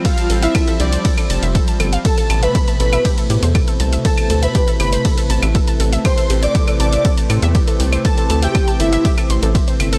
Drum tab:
RD |x---x---x---x---|x---x---x---x---|x---x---x---x---|x---x---x---x---|
HH |xxoxxxoxxxoxxxox|xxoxxxoxxxoxxxox|xxoxxxoxxxoxxxox|xxoxxxoxxxoxxxox|
CL |----x----x----x-|--x----x----x---|-x----x----x----|x----x----x----x|
BD |o---o---o---o---|o---o---o---o---|o---o---o---o---|o---o---o---o---|

RD |x---x---x---x---|
HH |xxoxoxoxxxoxxxox|
CL |----x----x----x-|
BD |o---o---o---o---|